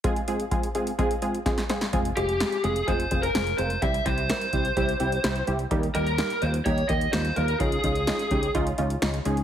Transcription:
<<
  \new Staff \with { instrumentName = "Lead electric guitar" } { \time 4/4 \key f \minor \tempo 4 = 127 r1 | r8 g'4 aes'8 c''8. bes'8. c''8 | e''8 c''2. r8 | r8 bes'4 c''8 des''8 ees''8 c''8 bes'8 |
aes'2 r2 | }
  \new Staff \with { instrumentName = "Analog polysynth" } { \time 4/4 \key f \minor <aes c' f' aes'>8 <aes c' f' aes'>8 <aes c' f' aes'>8 <aes c' f' aes'>8 <aes c' f' aes'>8 <aes c' f' aes'>8 <aes c' f' aes'>8 <aes c' f' aes'>8 | <aes c' f' aes'>8 <aes c' f' aes'>8 <aes c' f' aes'>8 <aes c' f' aes'>8 <aes c' f' aes'>8 <aes c' f' aes'>8 <aes c' f' aes'>8 <aes c' f' bes'>8 | <g c' e' g'>8 <g c' e' g'>8 <g c' e' bes'>8 <g c' e' g'>8 <g c' e' g'>8 <g c' e' g'>8 <g c' e' g'>8 <g c' e' g'>8 | <g bes ees' g'>8 <g bes ees' g'>8 <g bes ees' g'>8 <g bes ees' f'>8 <g bes ees' g'>8 <g bes ees' g'>8 <g bes ees' f'>8 <g bes ees' f'>8 |
<aes des' ees' f'>8 <aes des' ees' f'>8 <aes des' ees' f'>8 <aes des' ees' g'>8 <aes des' ees' f'>8 <aes des' ees' f'>8 <aes des' ees' f'>8 <aes des' ees' aes'>8 | }
  \new Staff \with { instrumentName = "Fretless electric bass" } { \clef bass \time 4/4 \key f \minor r1 | f,,8 f,,8. r16 f,,8 f,,8 f,,8 f,,8 f,,8 | c,8 c,8. r16 c,8 c,8 c,8 c,8 c,8 | ees,8 ees,8. r16 ees,8 ees,8 ees,8 ees,8 ees,8 |
des,8 des,8. r16 des,8 des,8 des,8 des,8 des,8 | }
  \new DrumStaff \with { instrumentName = "Drums" } \drummode { \time 4/4 <hh bd>16 hh16 hh16 hh16 <hh bd>16 hh16 hh16 hh16 <hh bd>16 hh16 hh16 hh16 <hh bd sn>16 <hh sn>16 <hh sn>16 <hh sn>16 | <hh bd>16 hh16 hh16 hh16 <hh sn>16 hh16 hh16 hh16 <hh bd>16 hh16 <hh bd>16 hh16 <hh sn>16 hh16 hh16 hh16 | <hh bd>16 hh16 <hh bd>16 hh16 <hh sn>16 hh16 <hh bd>16 hh16 <hh bd>16 hh16 hh16 hh16 <hh sn>16 hh16 hh16 hh16 | <hh bd>16 hh16 hh16 hh16 <hh sn>16 hh16 hh16 hh16 <hh bd>16 hh16 <hh bd>16 hh16 <hh sn>16 hh16 hh16 hh16 |
<hh bd>16 hh16 <hh bd>16 hh16 <hh sn>16 hh16 <hh bd>16 hh16 <hh bd>16 hh16 hh16 hh16 <hh sn>16 hh16 hh16 hh16 | }
>>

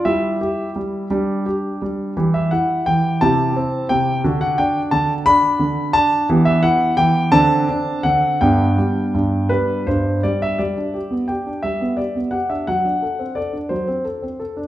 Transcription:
<<
  \new Staff \with { instrumentName = "Grand piano" } { \time 6/8 \key g \mixolydian \tempo 4. = 58 << { e''4. r4. | \key g \major r16 e''16 fis''8 g''8 a''4 g''8 | r16 fis''16 g''8 a''8 b''4 a''8 | r16 e''16 fis''8 g''8 a''4 fis''8 |
g''4. b'8 c''8 d''16 e''16 | d''4 g''8 e''8 d''8 fis''16 e''16 | fis''4 d''8 c''8 r4 | } \\ { <e' g'>4. <d' g'>4. | <e' g'>4. <e' g'>4. | <d' fis'>2. | <b g'>4. <c' d'>4. |
<b d'>2. | r2. | r2. | } >> }
  \new Staff \with { instrumentName = "Grand piano" } { \time 6/8 \key g \mixolydian g8 g'8 g8 g8 g'8 g8 | \key g \major e8 e'8 e8 c8 c'8 c8 | d8 d'8 d8 d'8 d8 d'8 | e8 e'8 e8 d8 d'8 d8 |
g,8 g8 g,8 g8 g,8 g8 | g16 d'16 g'16 b16 g'16 d'16 g16 b16 g'16 b16 g'16 d'16 | fis16 d'16 a'16 c'16 a'16 d'16 fis16 c'16 a'16 c'16 a'16 d'16 | }
>>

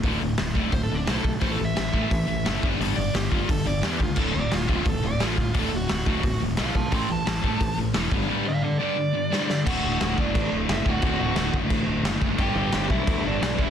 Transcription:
<<
  \new Staff \with { instrumentName = "Overdriven electric guitar" } { \time 4/4 \key d \major \tempo 4 = 175 r2 \tuplet 3/2 { c''8 a'8 d'8 c''8 a'8 r8 } | \tuplet 3/2 { c''8 a'8 e''8~ } e''2~ e''8 r8 | r8 d''8 g'8 f'8 a'8 d''8 g'8 f'8 | a'8 d''8 f'8 f'8 a'8 d''8 f'8 f'8 |
a'8 fis'2 r8 <c'' f''>8 <f'' a''>8 | <g'' c'''>8 a''2 r4. | r8 <d'' f''>8 <a' d''>8 d''2~ d''8 | <fis' fis''>4. <d' d''>4 r8 <e' e''>8 <fis' fis''>8~ |
<fis' fis''>4. r2 r8 | <g' g''>4. <e' e''>4 <d' d''>8 <d' d''>8 <e' e''>8 | }
  \new Staff \with { instrumentName = "Distorted electric guitar" } { \clef bass \time 4/4 \key d \major <d, a, d>8 <d, a,>8 <d, a,>8 <d, a, d>8 <d, a,>8 <d, a,>8 <d, a, d>8 <d, a,>8 | <a, e a>8 <a, e>8 <a, e>8 <a, e a>8 <a, e>8 <a, e>8 <a, e a>8 <g, d g>8 | <g, d g>8 <g, d>8 <g, d>8 <g, d g>8 <g, d>8 <g, d>8 <g, d g>8 <g, d>8 | <d, a, d>8 <d, a,>8 <d, a,>8 <d, a, d>8 <d, a,>8 <d, a,>8 <d, a, d>8 <d, a,>8 |
<d, a, d>8 <d, a,>8 <d, a,>8 <d, a, d>8 <d, a,>8 <d, a,>8 <d, a, d>8 <d, a,>8 | <a, e a>8 <a, e>8 <a, e>8 <a, e a>8 <a, e>8 <a, e>8 <a, e a>8 <g, d g>8 | <g, d g>8 <g, d>8 <g, d>8 <g, d g>8 <g, d>8 <g, d>8 <g, d g>8 <g, d>8 | <d, a, d a fis'>1 |
<d, a, d a fis'>1 | <g, d g b d' g'>1 | }
  \new Staff \with { instrumentName = "Distorted electric guitar" } { \clef bass \time 4/4 \key d \major <d, a, d>8 <d, a,>8 <d, a,>8 <d, a, d>8 <d, a,>8 <d, a,>8 <d, a, d>8 <d, a,>8 | <a, e a>8 <a, e>8 <a, e>8 <a, e a>8 <a, e>8 <a, e>8 <a, e a>8 <g, d g>8 | <g, d g>8 <g, d>8 <g, d>8 <g, d g>8 <g, d>8 <g, d>8 <g, d g>8 <g, d>8 | <d, a, d>8 <d, a,>8 <d, a,>8 <d, a, d>8 <d, a,>8 <d, a,>8 <d, a, d>8 <d, a,>8 |
<d, a, d>8 <d, a,>8 <d, a,>8 <d, a, d>8 <d, a,>8 <d, a,>8 <d, a, d>8 <d, a,>8 | <a, e a>8 <a, e>8 <a, e>8 <a, e a>8 <a, e>8 <a, e>8 <a, e a>8 <g, d g>8 | <g, d g>8 <g, d>8 <g, d>8 <g, d g>8 <g, d>8 <g, d>8 <g, d g>8 <g, d>8 | <d, a, d>2.~ <d, a, d>8 <d, a, d>8 |
<d, a, d>2.~ <d, a, d>8 <d, a, d>8 | <g, d g>2.~ <g, d g>8 <g, d g>8 | }
  \new Staff \with { instrumentName = "Fretless electric bass" } { \clef bass \time 4/4 \key d \major d,,8 d,,8 d,,8 d,,8 d,,8 d,,8 b,,8 b,,8 | a,,8 a,,8 a,,8 a,,8 a,,8 a,,8 fis,,8 g,,8 | g,,8 g,,8 g,,8 g,,8 g,,8 g,,8 e,8 cis,8 | d,,8 d,,8 d,,8 d,,8 d,,8 d,,8 a,,8 d,,8 |
d,,8 d,,8 d,,8 d,,8 d,,8 d,,8 b,,8 b,,8 | a,,8 a,,8 a,,8 a,,8 a,,8 a,,8 e,,8 g,,8 | r1 | d,,8 d,,8 d,,8 fis,,8 a,,8 d,,8 fis,,8 d,,8 |
d,,8 d,,8 d,,8 fis,,8 a,,8 d,,8 fis,,8 fis,,8 | g,,8 g,,8 g,,8 b,,8 d,8 g,,8 b,,8 ees,,8 | }
  \new DrumStaff \with { instrumentName = "Drums" } \drummode { \time 4/4 <hho bd>4 <hho sn>8 bd8 <hho bd>4 <hho sn>8 bd8 | <hho bd>4 <hho sn>8 bd8 <hho bd>4 <hho sn>8 bd8 | hho4 <hho sn>8 bd8 <hho bd>4 <hho sn>8 bd8 | <cymc bd>4 <hho sn>8 bd8 <hho bd>4 <hho sn>8 bd8 |
<hho bd>4 <hho sn>8 bd8 <hho bd>4 <hho sn>8 bd8 | <hho bd>4 <hho sn>8 bd8 <hho bd>4 <hho sn>8 bd8 | r4 r4 r4 sn8 sn8 | <cymc bd>4 <cymc sn>8 bd8 <cymc bd>4 <cymc sn>8 bd8 |
<cymc bd>4 <cymc sn>8 bd8 <cymc bd>4 <cymc sn>8 bd8 | <cymc bd>4 <cymc sn>8 bd8 <cymc bd>4 <cymc sn>8 bd8 | }
>>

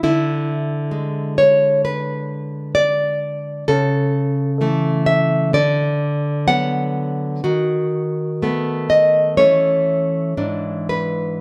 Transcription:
\new Staff \with { instrumentName = "Nylon-string guitar" } { \time 4/4 \key a \major \tempo 4 = 64 << { e'4. cis''8 b'4 d''4 | a'4. e''8 d''4 fis''4 | fis'4. dis''8 cis''4. b'8 | } \\ { d4 gis2. | cis4 <e a>4 d4 <fis b>4 | dis4 <a b>4 <e a cis'>4 <gis, e d'>4 | } >> }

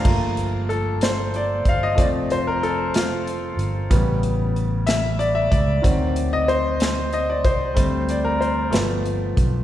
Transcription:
<<
  \new Staff \with { instrumentName = "Grand piano" } { \time 6/8 \key g \minor \tempo 4. = 62 f''16 r8. a'8 c''8 d''8 f''16 ees''16 | d''8 c''16 bes'16 a'8 f'8 r4 | r4. e''8 d''16 e''16 d''8~ | d''8. ees''16 c''4 ees''16 d''16 c''8~ |
c''8 d''16 bes'16 c''8 r4. | }
  \new Staff \with { instrumentName = "Grand piano" } { \time 6/8 \key g \minor <f a bes>2. | <f a c'>4. r4. | <cis g b>8 r2 r8 | <ees fis c'>4. r4. |
<g a c'>4. <f a b>4. | }
  \new Staff \with { instrumentName = "Fingered electric bass" } { \clef bass \time 6/8 \key g \minor g,,2~ g,,8 g,,8 | f,,2~ f,,8 g,,8 | a,,2~ a,,8 cis,8 | d,2~ d,8 c,8 |
d,4. g,,4 b,,8 | }
  \new DrumStaff \with { instrumentName = "Drums" } \drummode { \time 6/8 <cymc bd>8 hh8 hh8 <hh sn>8 hh8 <hh bd>8 | <hh bd>8 hh8 hh8 <hh sn>8 hh8 hh8 | <hh bd>8 hh8 hh8 <hh sn>8 hh8 <hh bd>8 | <hh bd>8 hh8 hh8 <hh sn>8 hh8 <hh bd>8 |
<hh bd>8 hh8 hh8 <hh sn>8 hh8 <hh bd>8 | }
>>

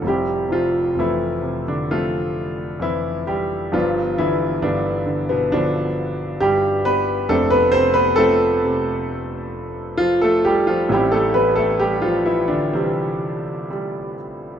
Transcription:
<<
  \new Staff \with { instrumentName = "Grand piano" } { \time 4/4 \key f \lydian \tempo 4 = 66 <g c' e' g'>8 <f f'>8 <e a e'>8. <d d'>16 <f a c' f'>4 <e e'>8 <g g'>8 | <f b d' f'>8 <e e'>8 <d b d'>8. <b, b>16 <d f b d'>4 <g g'>8 <b b'>8 | <a c' d' a'>16 <b b'>16 <c' c''>16 <b b'>16 <a c' a'>2 f'16 <a a'>16 <g g'>16 <f f'>16 | <g c' e' g'>16 <a a'>16 <b b'>16 <a a'>16 <g g'>16 <f f'>16 e'16 <d d'>16 <c e g c'>4. r8 | }
  \new Staff \with { instrumentName = "Grand piano" } { \clef bass \time 4/4 \key f \lydian <f,, f,>8 c8 f,8 c4. f,4 | <g,, g,>8 d8 g,8 d4. g,4 | <f,, f,>8 c8 f8 c4. f4 | <a,, a,>8 e4 e4. g4 | }
>>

